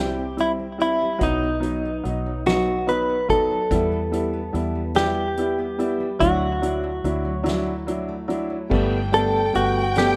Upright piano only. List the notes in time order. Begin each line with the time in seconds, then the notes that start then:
Already playing: G3 C4 E4
0.37 G3 C4 E4
0.78 G3 C4 E4
1.18 F#3 B3 D#4
1.60 F#3 B3 D#4
2.03 F#3 B3 D#4
2.46 F#3 B3 D#4
2.86 F#3 B3 D#4
3.28 F#3 B3 D#4
3.71 G3 B3 E4
4.12 G3 B3 E4
4.53 G3 B3 E4
4.95 G3 B3 E4
5.38 G3 B3 E4
5.78 G3 B3 E4
6.19 F#3 D4 E4
6.62 F#3 D4 E4
7.04 F#3 D4 E4
7.43 F#3 D4 E4
7.87 F#3 D4 E4
8.28 F#3 D4 E4
8.70 G3 A3 B3
9.12 G3 A3 B3
9.53 G3 A3 B3
9.96 G3 A3 B3